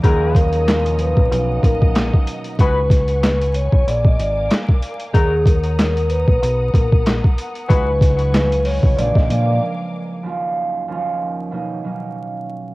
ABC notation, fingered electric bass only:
X:1
M:4/4
L:1/16
Q:"Swing 16ths" 1/4=94
K:Ebm
V:1 name="Fingered electric bass" clef=bass
E,,6- E,, B,,, =B,,,2 ^A,,,3 z3 | D,,6- D,, C,, B,,,2 A,,,2 z4 | E,,6- E,, B,,, =B,,,2 ^A,,,3 z3 | D,,6- D,, C,, B,,, B,,, B,,2 z4 |
z16 |]